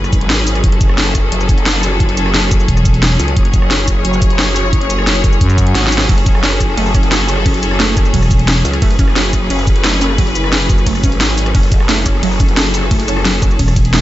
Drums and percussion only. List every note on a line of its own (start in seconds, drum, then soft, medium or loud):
0.04 cross-stick soft
0.04 shaker soft
0.13 kick loud
0.13 closed hi-hat medium
0.13 shaker medium
0.21 closed hi-hat soft
0.30 snare loud
0.30 closed hi-hat medium
0.47 open hi-hat medium
0.47 shaker medium
0.55 cross-stick soft
0.55 closed hi-hat soft
0.64 kick loud
0.64 closed hi-hat medium
0.72 closed hi-hat soft
0.81 kick loud
0.81 closed hi-hat medium
0.81 shaker medium
0.89 cross-stick soft
0.98 snare loud
0.98 closed hi-hat medium
1.15 kick medium
1.15 cross-stick soft
1.15 closed hi-hat medium
1.15 shaker medium
1.32 closed hi-hat medium
1.41 shaker soft
1.49 kick loud
1.49 closed hi-hat medium
1.49 shaker medium
1.58 closed hi-hat soft
1.66 snare loud
1.66 closed hi-hat medium
1.75 cross-stick soft
1.83 open hi-hat medium
1.83 shaker medium
1.92 cross-stick soft
2.00 kick loud
2.00 closed hi-hat medium
2.09 closed hi-hat soft
2.17 closed hi-hat medium
2.17 shaker medium
2.26 cross-stick soft
2.34 snare loud
2.34 closed hi-hat medium
2.51 kick loud
2.51 closed hi-hat medium
2.51 shaker medium
2.60 shaker soft
2.68 kick medium
2.68 closed hi-hat medium
2.77 cross-stick soft
2.77 shaker soft
2.85 kick loud
2.85 closed hi-hat medium
2.85 shaker medium
2.94 closed hi-hat soft
3.03 snare loud
3.03 closed hi-hat medium
3.20 open hi-hat medium
3.20 shaker medium
3.28 cross-stick soft
3.28 closed hi-hat soft
3.37 kick loud
3.37 closed hi-hat medium
3.45 closed hi-hat soft
3.54 kick loud
3.54 closed hi-hat medium
3.54 shaker medium
3.62 cross-stick soft
3.71 snare loud
3.71 closed hi-hat medium
3.88 kick medium
3.88 cross-stick soft
3.88 closed hi-hat medium
3.88 shaker medium
4.05 closed hi-hat loud
4.13 shaker soft
4.22 kick loud
4.22 closed hi-hat medium
4.22 shaker medium
4.30 closed hi-hat soft
4.39 snare loud
4.39 closed hi-hat loud
4.47 cross-stick soft
4.56 open hi-hat medium
4.56 shaker medium
4.64 cross-stick soft
4.73 kick loud
4.73 closed hi-hat loud
4.81 closed hi-hat soft
4.90 closed hi-hat medium
4.90 shaker medium
4.99 cross-stick soft
5.07 snare loud
5.07 closed hi-hat loud
5.16 closed hi-hat soft
5.24 kick loud
5.24 closed hi-hat medium
5.24 shaker medium
5.33 shaker soft
5.41 kick medium
5.41 closed hi-hat loud
5.50 cross-stick soft
5.50 shaker soft
5.58 kick loud
5.58 closed hi-hat medium
5.58 shaker medium
5.67 closed hi-hat soft
5.75 snare medium
5.75 closed hi-hat loud
5.87 snare medium
5.92 open hi-hat medium
5.92 shaker medium
5.98 snare loud
5.98 closed hi-hat soft
6.09 kick loud
6.09 closed hi-hat loud
6.09 ride medium
6.18 closed hi-hat soft
6.26 kick loud
6.26 closed hi-hat medium
6.26 shaker medium
6.35 cross-stick medium
6.43 snare loud
6.43 closed hi-hat loud
6.43 ride medium
6.60 kick medium
6.60 cross-stick soft
6.60 closed hi-hat medium
6.60 shaker medium
6.77 closed hi-hat loud
6.77 ride medium
6.86 shaker soft
6.95 kick loud
6.95 closed hi-hat medium
6.95 shaker medium
7.03 closed hi-hat soft
7.12 snare loud
7.12 closed hi-hat loud
7.12 ride medium
7.20 cross-stick soft
7.29 open hi-hat medium
7.29 shaker medium
7.37 cross-stick soft
7.46 kick loud
7.46 closed hi-hat medium
7.46 ride medium
7.54 closed hi-hat soft
7.63 closed hi-hat medium
7.63 shaker medium
7.71 cross-stick medium
7.80 snare loud
7.80 closed hi-hat loud
7.80 ride medium
7.97 kick loud
7.97 closed hi-hat medium
7.97 shaker medium
8.05 shaker soft
8.14 kick medium
8.14 closed hi-hat medium
8.14 ride medium
8.22 cross-stick soft
8.22 shaker soft
8.31 kick loud
8.31 closed hi-hat medium
8.31 shaker medium
8.39 closed hi-hat soft
8.48 snare loud
8.48 closed hi-hat loud
8.48 ride medium
8.65 open hi-hat medium
8.65 shaker medium
8.73 cross-stick soft
8.73 closed hi-hat soft
8.82 kick loud
8.82 closed hi-hat medium
8.82 ride medium
8.91 closed hi-hat soft
8.99 kick loud
8.99 closed hi-hat medium
8.99 shaker medium
9.08 cross-stick medium
9.16 snare loud
9.16 closed hi-hat medium
9.16 ride medium
9.33 kick medium
9.33 cross-stick soft
9.33 closed hi-hat medium
9.33 shaker medium
9.50 closed hi-hat medium
9.50 ride medium
9.59 shaker soft
9.67 kick loud
9.67 closed hi-hat medium
9.67 shaker medium
9.76 closed hi-hat soft
9.84 snare loud
9.84 closed hi-hat medium
9.84 ride medium
9.93 cross-stick soft
10.01 open hi-hat medium
10.01 shaker medium
10.10 cross-stick soft
10.18 kick loud
10.18 closed hi-hat medium
10.18 ride medium
10.27 closed hi-hat soft
10.35 closed hi-hat medium
10.35 shaker medium
10.44 cross-stick medium
10.53 snare loud
10.53 closed hi-hat medium
10.53 ride medium
10.69 kick loud
10.69 closed hi-hat medium
10.69 shaker medium
10.78 shaker soft
10.87 kick medium
10.87 closed hi-hat medium
10.87 ride medium
10.95 cross-stick soft
10.95 shaker soft
11.04 kick loud
11.04 closed hi-hat medium
11.04 shaker medium
11.12 closed hi-hat soft
11.21 snare loud
11.21 closed hi-hat medium
11.21 ride medium
11.38 open hi-hat medium
11.38 shaker medium
11.46 cross-stick soft
11.46 closed hi-hat soft
11.55 kick loud
11.55 closed hi-hat medium
11.55 ride medium
11.63 closed hi-hat soft
11.72 kick loud
11.72 closed hi-hat medium
11.72 shaker medium
11.80 cross-stick soft
11.89 snare loud
11.89 closed hi-hat medium
11.89 ride medium
12.06 kick medium
12.06 cross-stick soft
12.06 closed hi-hat medium
12.06 shaker medium
12.23 closed hi-hat medium
12.23 ride medium
12.31 shaker soft
12.40 kick loud
12.40 closed hi-hat medium
12.40 shaker medium
12.49 closed hi-hat soft
12.57 snare loud
12.57 closed hi-hat medium
12.57 ride medium
12.66 cross-stick soft
12.74 open hi-hat medium
12.74 shaker medium
12.83 cross-stick soft
12.91 kick loud
12.91 closed hi-hat medium
12.91 ride medium
13.00 closed hi-hat soft
13.08 closed hi-hat medium
13.08 shaker medium
13.17 cross-stick soft
13.25 snare loud
13.25 closed hi-hat medium
13.25 ride medium
13.42 kick loud
13.42 closed hi-hat medium
13.42 shaker medium
13.51 shaker soft
13.59 kick medium
13.59 closed hi-hat loud
13.59 ride medium
13.68 cross-stick soft
13.68 shaker soft
13.76 kick loud
13.76 closed hi-hat medium
13.76 shaker medium
13.85 closed hi-hat soft
13.93 snare loud
13.93 closed hi-hat medium
13.93 ride medium